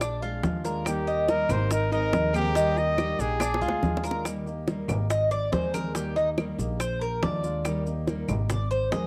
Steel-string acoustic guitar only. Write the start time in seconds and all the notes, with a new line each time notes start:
0.01 muted steel-string acoustic guitar stroke
0.22 G#3 D4 F4
0.43 F3 G#3 D4 F4
0.64 G#3 D4 F4
0.86 D#3 G3 A#3 D#4 G4
1.28 D#3 G3 A#3 D#4 G4
1.50 A#3 D#4 G4
1.72 muted steel-string acoustic guitar stroke
1.93 G#3 C4 G#4
2.13 D#3 G#3 C4 G#4
2.34 G#3 C4 G#4
2.56 D#3 G3 A#3 D#4 G4
2.98 D#3 G3 A#3 D#4 G4
3.19 A#3 D#4 G4
3.42 muted steel-string acoustic guitar stroke
3.61 G#3 D4 F4
3.82 F3 G#3 D4 F4
4.04 G#3 D4 F4
4.25 D#3 G3 A#3 D#4 G4
4.46 A#3 D#4 G4
4.67 D#3 G3 A#3 D#4 G4
4.88 A#3 D#4 G4
5.10 muted steel-string acoustic guitar stroke
5.53 D#3 G#3 C4 G#4
5.74 G#3 C4 G#4
5.94 D#3 G3 A#3 D#4 G4
6.16 A#3 D#4 G4
6.37 D#3 G3 A#3 D#4 G4
6.59 A#3 D#4 G4
6.81 muted steel-string acoustic guitar stroke
7.22 F3 G#3 D4 F4
7.44 G#3 D4 F4
7.65 D#3 G3 A#3 D#4 G4
7.86 A#3 D#4 G4
8.07 D#3 G3 A#3 D#4 G4
8.29 A#3 D#4 G4
8.50 muted steel-string acoustic guitar stroke
8.92 D#3 G#3 C4 G#4